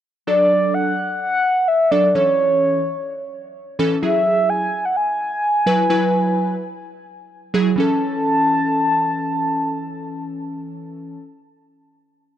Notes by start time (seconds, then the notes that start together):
0.27 F#3 D4 A4 D5
0.74 F#5
1.21 F#5
1.68 E5
1.91 F#3 D4 A4 D5
2.15 E3 C#4 A4 C#5
3.79 E3 C#4 A4
4.02 F#3 E4 G#4 E5
4.49 G#5
4.85 F#5
4.96 G#5
5.66 F#3 E4 B4
5.90 F#3 E4 B4
7.54 F#3 E4 G#4
7.76 E3 C#4 A5
7.80 A4